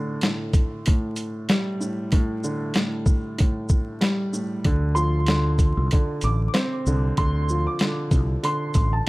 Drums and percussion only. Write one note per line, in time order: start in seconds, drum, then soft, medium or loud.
0.21 snare loud
0.21 closed hi-hat medium
0.54 kick loud
0.54 closed hi-hat soft
0.54 shaker soft
0.86 kick loud
0.86 closed hi-hat loud
1.16 closed hi-hat medium
1.16 shaker medium
1.49 snare loud
1.49 closed hi-hat medium
1.81 shaker medium
2.12 kick loud
2.12 closed hi-hat medium
2.44 shaker medium
2.74 snare loud
2.74 closed hi-hat medium
3.06 kick loud
3.06 shaker soft
3.38 kick medium
3.38 closed hi-hat loud
3.69 kick loud
3.69 shaker medium
4.01 snare loud
4.01 closed hi-hat medium
4.34 shaker medium
4.65 kick loud
4.65 closed hi-hat medium
4.96 shaker medium
5.26 snare loud
5.26 closed hi-hat medium
5.59 kick loud
5.59 closed hi-hat soft
5.59 shaker soft
5.91 kick loud
5.91 closed hi-hat loud
6.21 closed hi-hat medium
6.21 shaker medium
6.54 snare loud
6.54 closed hi-hat medium
6.86 shaker medium
7.17 kick loud
7.17 closed hi-hat medium
7.49 shaker medium
7.79 snare loud
7.79 closed hi-hat medium
8.11 kick loud
8.11 closed hi-hat soft
8.11 shaker soft
8.44 closed hi-hat loud
8.74 kick loud
8.74 closed hi-hat medium
8.74 shaker medium